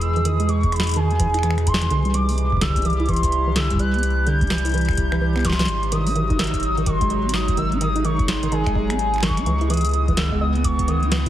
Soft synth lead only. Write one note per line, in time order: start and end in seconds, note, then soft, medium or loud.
0.02 0.27 E6 loud
0.25 0.50 D#6 loud
0.49 0.74 C#6 loud
0.73 0.98 B5 medium
0.96 1.67 G#5 loud
1.67 2.16 C6 loud
2.14 2.63 D6 loud
2.61 2.87 E6 loud
2.85 3.10 D6 loud
3.09 3.57 C6 loud
3.56 3.79 E6 loud
3.80 4.28 F#6 loud
4.27 5.46 G6 loud
5.45 5.93 C6 loud
5.92 6.41 D#6 loud
6.39 6.64 E6 loud
6.63 6.88 D#6 loud
6.87 7.35 C6 loud
7.34 7.57 D#6 loud
7.57 7.68 E6 loud
7.81 8.06 D#6 loud
8.05 8.24 C#6 loud
8.24 8.30 C#6 medium
8.28 8.53 C6 loud
8.52 9.24 G#5 loud
9.23 9.72 C#6 loud
9.70 10.19 D#6 loud
10.17 10.42 E6 loud
10.41 10.66 D#6 loud
10.64 10.90 C#6 medium
10.88 11.29 D#6 loud